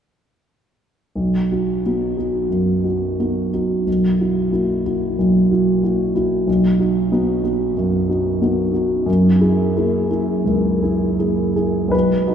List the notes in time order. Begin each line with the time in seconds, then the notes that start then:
1.15 B1
1.52 D#4 F#4
1.86 B3 D#4 F#4
2.17 D#4 F#4
2.50 F#2
2.84 D#4 F#4
3.19 B3 D#4 F#4
3.53 D#4 F#4
3.87 B1
4.20 E4 F#4
4.52 A#3 E4 F#4
4.86 E4 F#4
5.19 B1
5.51 E4 F#4
5.83 A#3 E4 F#4
6.15 E4 F#4
6.47 B1
6.80 D#4 F#4
7.12 B3 D#4 F#4
7.44 D#4 F#4
7.77 F#2
8.09 D#4 F#4
8.42 B3 D#4 F#4
8.73 D#4 F#4
9.06 F#2
9.41 E4 G#4
9.76 A#3 E4 G#4
10.10 E4 G#4
10.45 C#2
10.83 E4 G#4
11.19 A#3 E4 G#4
11.56 E4 G#4
11.88 B1 B4
12.27 D#4 F#4